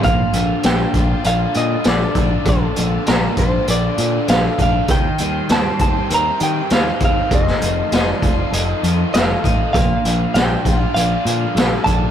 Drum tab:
HH |x-x-x-x-x-x-x-x-|x-x-x-x-x-x-x-x-|x-x-x-x-x-x-x-x-|x-x-x-x-x-x-x-x-|
SD |----o-------o---|----o-------o---|----o-------o---|-o--o-------o---|
BD |o-----o-------o-|o-----o-------o-|o-----o-------o-|o-----o-------o-|

HH |x-x-x-x-x-x-x-x-|
SD |----o-------o---|
BD |o-----o-------o-|